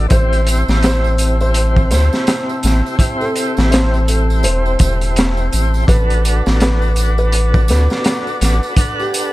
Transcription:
Already playing: E6
0.08 A1 C4 E4 G4 C5 A5, kick, closed hi-hat, tambourine
0.14 C5
0.33 closed hi-hat, tambourine
0.47 closed hi-hat, tambourine
0.68 A1, snare, tambourine
0.83 C5, snare, closed hi-hat, tambourine
1.04 tambourine
1.17 C4 E4 G4, closed hi-hat, tambourine
1.22 C5
1.41 C5, tambourine
1.54 closed hi-hat, tambourine
1.76 kick, tambourine
1.91 D2 C5, snare, closed hi-hat, tambourine
2.13 snare, tambourine
2.27 snare, closed hi-hat, tambourine
2.49 tambourine
2.63 A1, snare, closed hi-hat, tambourine
2.86 tambourine
2.98 C4 E4 G4, kick, closed hi-hat, tambourine
3.03 C5
3.20 A4, tambourine
3.36 closed hi-hat, tambourine
3.57 A1, snare, tambourine
3.71 C5, snare, closed hi-hat, tambourine
3.94 tambourine
4.06 C4 E4 G4 A4, closed hi-hat, tambourine
4.11 C5
4.30 tambourine
4.43 E1 C5, closed hi-hat, tambourine
4.66 tambourine
4.79 E1, kick, closed hi-hat, tambourine
5.01 closed hi-hat, tambourine
5.16 snare, closed hi-hat, tambourine
5.37 tambourine
5.53 A1, closed hi-hat, tambourine
5.74 tambourine
5.87 A1 D4 F#4 A4 B4 F#5 D6, kick, closed hi-hat, tambourine
5.92 B4
6.10 closed hi-hat, tambourine
6.25 closed hi-hat, tambourine
6.46 A1, snare, tambourine
6.60 B4, snare, closed hi-hat, tambourine
6.82 tambourine
6.95 D4 F#4 A4, closed hi-hat, tambourine
7.01 B4
7.18 B4, tambourine
7.32 closed hi-hat, tambourine
7.54 kick, tambourine
7.68 D2 B4, snare, closed hi-hat, tambourine
7.90 snare, tambourine
8.04 snare, closed hi-hat, tambourine
8.27 tambourine
8.41 A1, snare, closed hi-hat, tambourine
8.63 tambourine
8.76 D4 A4 F#5, kick, closed hi-hat, tambourine
8.81 B4
8.99 G4, tambourine
9.14 closed hi-hat, tambourine

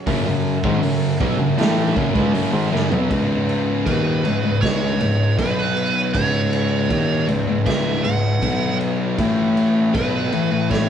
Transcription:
Already playing: F#3 C#4
0.07 F#2 C#3 A4, kick, open hi-hat
0.26 F#2 C#3
0.64 G#2 D#3, kick
0.82 F#2 C#3, open hi-hat
1.20 B1 B2 F#3, kick
1.39 F#2 C#3
1.58 A2 E3 A3, snare, open hi-hat
1.95 F#2 C#3, kick
2.14 C#2 C#3 G#3, kick
2.33 F#2 C#3, open hi-hat
2.52 G#2 D#3
2.71 F#2 C#3
2.76 snare
2.90 B1 B2 F#3, floor tom
3.09 C#2 G#2 C#3 C#4 G#4 D#5, kick, crash
3.49 crash
3.86 D#2 A#2 D#3 B4, kick, crash
4.24 C#2 G#2, crash
4.43 C#2 G#2
4.61 C#2 G#2 C#3 C#5, kick, snare, crash
5.00 C#2 G#2, crash
5.38 B1 B2 F#3 B3 F#4 B4 C#5, kick, crash
5.77 crash
6.13 C#2 G#2 C#3 C#4 G#4 C#5 E5, kick, crash
6.53 crash
6.90 D#2 A#2 D#3, kick, crash
7.28 C#2 G#2, crash
7.47 C#2 G#2
7.65 C#2 G#2 C#3 E5, kick, snare, crash
8.04 C#2 G#2 F#5, crash
8.42 B1 B2 F#3 B3 F#4 C#5, kick, crash
8.81 crash
9.18 A2 E3 A3 E4 B4, kick, crash
9.57 crash
9.94 B1 B2 F#3 B3 B4, kick, crash
10.32 A2 E3, crash
10.51 A2 E3
10.69 A2 E3 A3 C#5, kick, crash
10.73 snare

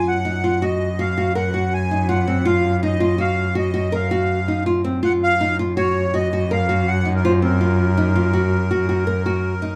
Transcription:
Already playing: F#2 F4
0.07 F#5
0.25 D#4
0.44 F4
0.62 F#4 D#5
0.99 F#4 F5
1.18 F#4
1.35 A#4 F#5
1.54 F#4
1.74 G#5
1.91 D#4
2.08 F4 F#5
2.27 C4
2.45 F4 F5
2.83 D#4 D#5
3.00 F4
3.18 F#4 F5
3.55 F#4 D#5
3.74 F#4
3.92 A#4 F5
4.11 F#4
4.48 D#4
4.66 F4
4.84 C4
5.03 F#2 F4 F#5
5.23 F5
5.41 D#4
5.59 F4
5.77 F#4 C#5
6.14 F#4 D#5
6.33 F#4
6.51 A#4 F5
6.69 F#4
6.88 F#5
7.05 D#4
7.15 A#4
7.25 F4 C5
7.42 C4 A#4
7.61 F4
7.97 D#4
8.15 F4
8.33 F#4
8.71 F#4
8.89 F#4
9.07 A#4
9.26 F#4
9.62 D#4

